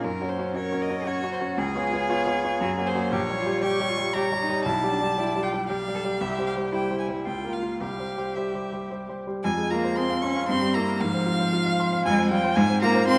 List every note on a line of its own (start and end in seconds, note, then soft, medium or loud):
0.04 0.21 F#2 medium
0.04 0.57 C#4 medium
0.04 0.31 A#4 medium
0.21 0.36 C#4 soft
0.21 0.37 F#4 soft
0.21 0.37 C#5 soft
0.29 0.55 C5 medium
0.38 0.54 C#4 soft
0.38 0.54 F#4 soft
0.38 0.54 C#5 medium
0.55 0.71 C#4 soft
0.55 0.71 F#4 medium
0.55 1.08 A#4 medium
0.55 0.71 C#5 medium
0.55 0.83 C#5 medium
0.72 0.88 C#4 soft
0.72 0.88 F#4 soft
0.72 0.88 C#5 medium
0.82 1.08 D#5 medium
0.90 1.05 C#4 soft
0.90 1.05 F#4 soft
0.90 1.05 C#5 medium
1.07 1.22 C#4 medium
1.07 1.22 F#4 medium
1.07 1.60 F#4 medium
1.07 1.32 C#5 medium
1.07 1.22 C#5 medium
1.24 1.39 C#4 soft
1.24 1.39 F#4 medium
1.24 1.40 C#5 medium
1.33 1.41 C5 medium
1.40 1.56 C#4 medium
1.40 1.56 F#4 medium
1.40 1.57 C#5 medium
1.58 1.74 C#2 medium
1.58 2.88 G#4 loud
1.58 2.11 G#4 medium
1.75 1.90 B3 soft
1.75 1.91 F4 medium
1.75 1.91 C#5 medium
1.92 2.08 B3 medium
1.92 2.08 F4 medium
1.92 2.08 C#5 medium
2.09 2.25 B3 medium
2.09 2.61 F4 medium
2.09 2.25 F4 medium
2.09 2.25 C#5 medium
2.27 2.42 B3 medium
2.27 2.42 F4 medium
2.27 2.42 C#5 medium
2.44 2.59 B3 medium
2.44 2.59 F4 medium
2.44 2.60 C#5 medium
2.61 2.77 F#2 medium
2.61 2.69 F#4 medium
2.78 2.93 A#3 medium
2.78 2.93 F#4 medium
2.78 2.93 C#5 medium
2.86 3.11 G#4 medium
2.86 3.14 C5 medium
2.95 3.10 A#3 soft
2.95 3.10 F#4 medium
2.95 3.10 C#5 medium
3.12 3.28 A#1 medium
3.12 3.21 G4 medium
3.12 3.63 C#5 loud
3.29 3.44 G3 medium
3.29 3.44 G4 medium
3.29 3.45 C#5 medium
3.38 3.64 F4 medium
3.46 3.61 G3 medium
3.46 3.61 G4 medium
3.46 3.61 C#5 medium
3.63 3.78 G3 medium
3.63 3.90 G4 medium
3.63 3.78 G4 medium
3.63 3.78 C#5 medium
3.63 4.15 C#6 loud
3.80 3.95 G3 medium
3.80 3.95 G4 medium
3.80 3.96 C#5 medium
3.89 4.14 F4 medium
3.97 4.12 G3 medium
3.97 4.13 G4 medium
3.97 4.13 C#5 medium
4.13 4.30 G3 medium
4.13 4.23 G4 medium
4.13 4.30 G4 medium
4.13 4.30 C#5 medium
4.13 4.64 A#5 loud
4.32 4.47 G3 medium
4.32 4.47 G4 medium
4.32 4.47 C#5 medium
4.41 4.67 D#4 medium
4.49 4.64 G3 medium
4.49 4.65 G4 medium
4.49 4.65 C#5 medium
4.65 4.82 B1 medium
4.65 4.91 E4 medium
4.65 5.44 A5 loud
4.83 4.98 G3 medium
4.83 4.99 G4 soft
4.83 4.99 D5 medium
4.91 4.99 D4 medium
5.01 5.16 G3 medium
5.01 5.16 G4 soft
5.01 5.16 D5 medium
5.17 5.33 G3 medium
5.17 5.42 E4 medium
5.17 5.33 G4 medium
5.17 5.33 D5 medium
5.35 5.50 G3 medium
5.35 5.51 G4 soft
5.35 5.51 D5 medium
5.43 5.51 F4 medium
5.43 5.68 G5 medium
5.53 5.68 G3 medium
5.53 5.68 G4 medium
5.53 5.68 D5 medium
5.69 5.85 G3 soft
5.69 5.77 G4 medium
5.69 5.85 G4 medium
5.69 5.85 D5 medium
5.69 6.22 F5 loud
5.87 6.02 G3 soft
5.87 6.03 G4 soft
5.87 6.03 D5 soft
5.95 6.03 A4 medium
6.04 6.19 G3 medium
6.04 6.20 G4 soft
6.04 6.20 D5 medium
6.20 6.38 C2 medium
6.20 6.74 G4 medium
6.20 6.46 E5 medium
6.38 6.54 G3 soft
6.38 6.54 G4 soft
6.38 6.54 C5 soft
6.46 6.54 F5 medium
6.56 6.71 G3 soft
6.56 6.72 G4 soft
6.56 6.72 C5 medium
6.72 6.89 G3 soft
6.72 7.27 E4 medium
6.72 6.89 G4 soft
6.72 6.89 C5 soft
6.72 6.98 G5 medium
6.90 7.07 G3 soft
6.90 7.07 G4 soft
6.90 7.07 C5 soft
6.99 7.07 G#5 medium
7.08 7.24 G3 soft
7.08 7.25 G4 soft
7.08 7.25 C5 soft
7.26 7.44 C#2 medium
7.26 7.82 F4 medium
7.26 7.54 G5 medium
7.44 7.61 A#3 soft
7.44 7.61 F4 soft
7.44 7.61 A#4 soft
7.53 7.81 F5 medium
7.63 7.79 A#3 soft
7.63 7.79 F4 soft
7.63 7.79 A#4 soft
7.80 7.98 C2 medium
7.80 9.17 G4 medium
7.80 8.37 F5 medium
7.99 8.16 G3 soft
7.99 8.16 G4 soft
7.99 8.16 C5 soft
8.17 8.34 G3 soft
8.17 8.34 G4 soft
8.17 8.34 C5 soft
8.35 8.53 G3 soft
8.35 8.53 G4 soft
8.35 8.53 C5 soft
8.35 8.90 E5 medium
8.54 8.71 G3 soft
8.54 8.71 G4 soft
8.54 8.71 C5 soft
8.72 8.89 G3 soft
8.72 8.89 G4 soft
8.72 8.89 C5 soft
8.90 9.07 G3 soft
8.90 9.07 G4 soft
8.90 9.07 C5 soft
9.09 9.25 G3 soft
9.09 9.25 G4 soft
9.09 9.25 C5 soft
9.27 9.43 G3 soft
9.27 9.43 G4 soft
9.27 9.43 C5 soft
9.44 10.46 F2 medium
9.44 9.52 G#3 medium
9.44 9.72 G#5 loud
9.57 9.79 G#3 medium
9.70 9.99 A#3 medium
9.70 9.92 F4 medium
9.70 9.98 A#5 medium
9.84 10.05 C5 medium
9.96 10.23 C4 medium
9.96 10.18 G#4 medium
9.96 10.23 C6 loud
10.10 10.31 F5 medium
10.22 10.49 C#4 medium
10.22 10.44 C6 medium
10.22 10.47 C#6 loud
10.36 10.49 F5 medium
10.48 10.99 G2 medium
10.48 10.77 C4 medium
10.48 10.76 C6 loud
10.62 10.83 G3 medium
10.74 11.02 A#3 medium
10.74 10.96 E4 medium
10.74 11.02 A#5 loud
10.88 11.01 A#4 medium
11.01 12.02 G#2 medium
11.01 12.05 F3 medium
11.01 12.05 F5 loud
11.14 11.35 C4 medium
11.27 11.48 F4 medium
11.40 11.61 C5 medium
11.53 11.74 F4 medium
11.66 11.87 F5 medium
11.80 12.01 C6 medium
11.93 12.06 F5 medium
12.05 12.55 F2 medium
12.05 12.31 G#3 loud
12.05 12.30 G#5 loud
12.19 12.39 C4 medium
12.31 12.39 G3 medium
12.31 12.52 F4 medium
12.31 12.57 G5 loud
12.44 12.57 C5 medium
12.55 13.18 G#2 loud
12.55 12.64 G#3 loud
12.55 12.82 G#5 loud
12.70 12.90 C4 medium
12.82 13.07 A#3 loud
12.82 13.03 F4 medium
12.82 13.07 A#5 loud
12.95 13.16 C5 medium
13.07 13.18 C4 loud
13.07 13.18 F4 medium
13.07 13.18 C6 loud